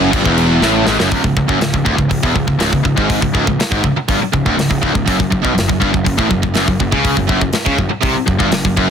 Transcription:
Already playing: picked electric bass F#1, distorted electric guitar F#2
0.12 picked electric bass G1, distorted electric guitar G2, kick, crash
0.24 picked electric bass E1, distorted electric guitar E2, kick
0.38 crash
0.62 picked electric bass A1, distorted electric guitar A2, snare
0.87 picked electric bass G#1, distorted electric guitar G#2, snare
0.99 picked electric bass F#1, distorted electric guitar F#2, snare
1.11 picked electric bass C#1, distorted electric guitar C#2, kick, open hi-hat
1.24 picked electric bass C#1, distorted electric guitar C#2, kick
1.37 picked electric bass C#1, distorted electric guitar C#2, kick
1.48 picked electric bass F#1, distorted electric guitar F#2, kick
1.60 picked electric bass C#1, distorted electric guitar C#2, snare, open hi-hat
1.74 picked electric bass C#1, distorted electric guitar C#2, kick
1.85 picked electric bass D1, distorted electric guitar D2, kick
1.97 picked electric bass C#1, distorted electric guitar C#2, kick
2.10 picked electric bass C#1, distorted electric guitar C#2, kick, open hi-hat
2.23 picked electric bass E1, distorted electric guitar E2, kick
2.35 picked electric bass C#1, distorted electric guitar C#2, kick
2.47 picked electric bass C#1, distorted electric guitar C#2, kick
2.59 picked electric bass C#1, distorted electric guitar C#2, snare, open hi-hat
2.72 picked electric bass C#1, distorted electric guitar C#2, kick
2.83 picked electric bass C#1, distorted electric guitar C#2, kick
2.96 picked electric bass G#1, distorted electric guitar G#2, kick
3.10 kick, open hi-hat
3.21 picked electric bass C#1, distorted electric guitar C#2, kick
3.34 picked electric bass C#1, distorted electric guitar C#2, kick
3.46 picked electric bass C#1, distorted electric guitar C#2, kick
3.58 muted picked electric bass stroke, muted distorted electric guitar stroke, snare, open hi-hat
3.71 picked electric bass G#1, distorted electric guitar G#2, kick
3.84 picked electric bass C#1, distorted electric guitar C#2, kick
3.94 muted picked electric bass stroke, muted distorted electric guitar stroke
4.09 picked electric bass G1, distorted electric guitar G2, kick, open hi-hat
4.20 muted picked electric bass stroke, muted distorted electric guitar stroke
4.33 picked electric bass C#1, distorted electric guitar C#2, kick
4.46 picked electric bass D1, distorted electric guitar D2, kick
4.57 picked electric bass C#1, distorted electric guitar C#2, snare, open hi-hat
4.71 picked electric bass C#1, distorted electric guitar C#2, kick
4.83 picked electric bass C#1, distorted electric guitar C#2, kick
4.94 picked electric bass C#1, distorted electric guitar C#2, kick
5.08 picked electric bass F#1, distorted electric guitar F#2, kick, open hi-hat
5.20 picked electric bass F#1, distorted electric guitar F#2, kick
5.31 picked electric bass F#1, distorted electric guitar F#2, kick
5.43 picked electric bass B1, distorted electric guitar B2, kick
5.55 picked electric bass F#1, distorted electric guitar F#2, open hi-hat
5.59 snare
5.68 picked electric bass F#1, distorted electric guitar F#2, kick
5.80 picked electric bass G1, distorted electric guitar G2, kick
5.93 picked electric bass F#1, distorted electric guitar F#2, kick
6.05 picked electric bass F#1, distorted electric guitar F#2, kick, open hi-hat
6.18 picked electric bass A1, distorted electric guitar A2, kick
6.30 picked electric bass F#1, distorted electric guitar F#2, kick
6.43 picked electric bass F#1, distorted electric guitar F#2, kick
6.55 picked electric bass F#1, distorted electric guitar F#2, snare, open hi-hat
6.68 picked electric bass F#1, distorted electric guitar F#2, kick
6.80 picked electric bass F#1, distorted electric guitar F#2, kick
6.92 picked electric bass C#2, distorted electric guitar C#3, kick
7.05 kick, open hi-hat
7.17 picked electric bass F#1, distorted electric guitar F#2, kick
7.29 picked electric bass F#1, distorted electric guitar F#2, kick
7.41 picked electric bass F#1, distorted electric guitar F#2, kick
7.52 muted picked electric bass stroke, muted distorted electric guitar stroke, snare, open hi-hat
7.66 picked electric bass C#2, distorted electric guitar C#3, kick
7.78 picked electric bass F#1, distorted electric guitar F#2, kick
7.90 muted picked electric bass stroke, muted distorted electric guitar stroke
8.03 picked electric bass C2, distorted electric guitar C3, kick, open hi-hat
8.14 muted distorted electric guitar stroke, muted picked electric bass stroke
8.26 picked electric bass F#1, distorted electric guitar F#2, kick
8.39 picked electric bass G1, distorted electric guitar G2, kick
8.52 picked electric bass F#1, distorted electric guitar F#2, snare, open hi-hat
8.65 picked electric bass F#1, distorted electric guitar F#2, kick
8.77 picked electric bass F#1, distorted electric guitar F#2, kick

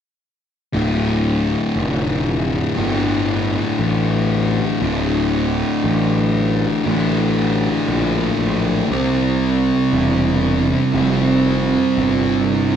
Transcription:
0.73 picked electric bass D1, distorted electric guitar D2 A2 D3
1.75 picked electric bass F1
2.76 picked electric bass G1, distorted electric guitar D2 A2 D3
3.79 picked electric bass A1
4.81 picked electric bass D1, distorted electric guitar D2 A2 D3
5.84 picked electric bass A1
6.86 picked electric bass A1, distorted electric guitar D2 A2 D3
7.88 picked electric bass A#1
8.39 picked electric bass A#1
8.90 picked electric bass C2, distorted electric guitar C3 G3 C4
9.93 picked electric bass E1
10.93 picked electric bass F1, distorted electric guitar C3 G3 C4
11.97 picked electric bass G1

